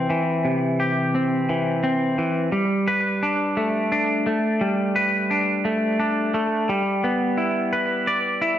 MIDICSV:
0, 0, Header, 1, 2, 480
1, 0, Start_track
1, 0, Key_signature, 1, "major"
1, 0, Tempo, 692841
1, 312, Time_signature, 6, 3, 24, 8
1, 5950, End_track
2, 0, Start_track
2, 0, Title_t, "Clean electric guitar"
2, 0, Program_c, 0, 27
2, 0, Note_on_c, 0, 48, 65
2, 0, Note_on_c, 0, 60, 67
2, 0, Note_on_c, 0, 67, 63
2, 69, Note_on_c, 0, 52, 73
2, 70, Note_off_c, 0, 48, 0
2, 310, Note_on_c, 0, 48, 73
2, 550, Note_off_c, 0, 67, 0
2, 553, Note_on_c, 0, 67, 63
2, 787, Note_off_c, 0, 60, 0
2, 795, Note_on_c, 0, 60, 69
2, 1026, Note_off_c, 0, 52, 0
2, 1035, Note_on_c, 0, 52, 65
2, 1263, Note_off_c, 0, 60, 0
2, 1272, Note_on_c, 0, 60, 70
2, 1504, Note_off_c, 0, 52, 0
2, 1512, Note_off_c, 0, 48, 0
2, 1512, Note_on_c, 0, 52, 66
2, 1745, Note_off_c, 0, 52, 0
2, 1747, Note_on_c, 0, 55, 74
2, 1753, Note_off_c, 0, 60, 0
2, 1992, Note_on_c, 0, 71, 77
2, 2236, Note_on_c, 0, 62, 77
2, 2473, Note_on_c, 0, 57, 78
2, 2494, Note_off_c, 0, 67, 0
2, 2707, Note_off_c, 0, 62, 0
2, 2715, Note_on_c, 0, 62, 73
2, 2947, Note_off_c, 0, 57, 0
2, 2955, Note_on_c, 0, 57, 74
2, 2976, Note_off_c, 0, 55, 0
2, 3194, Note_on_c, 0, 55, 84
2, 3431, Note_off_c, 0, 71, 0
2, 3434, Note_on_c, 0, 71, 74
2, 3667, Note_off_c, 0, 62, 0
2, 3676, Note_on_c, 0, 62, 70
2, 3905, Note_off_c, 0, 57, 0
2, 3913, Note_on_c, 0, 57, 79
2, 4146, Note_off_c, 0, 62, 0
2, 4154, Note_on_c, 0, 62, 83
2, 4386, Note_off_c, 0, 57, 0
2, 4393, Note_off_c, 0, 55, 0
2, 4394, Note_on_c, 0, 57, 80
2, 4632, Note_off_c, 0, 62, 0
2, 4632, Note_off_c, 0, 71, 0
2, 4633, Note_off_c, 0, 57, 0
2, 4637, Note_on_c, 0, 55, 83
2, 4876, Note_on_c, 0, 59, 74
2, 5110, Note_on_c, 0, 64, 65
2, 5353, Note_on_c, 0, 71, 77
2, 5593, Note_on_c, 0, 74, 75
2, 5828, Note_off_c, 0, 64, 0
2, 5831, Note_on_c, 0, 64, 77
2, 5950, Note_off_c, 0, 55, 0
2, 5950, Note_off_c, 0, 59, 0
2, 5950, Note_off_c, 0, 64, 0
2, 5950, Note_off_c, 0, 71, 0
2, 5950, Note_off_c, 0, 74, 0
2, 5950, End_track
0, 0, End_of_file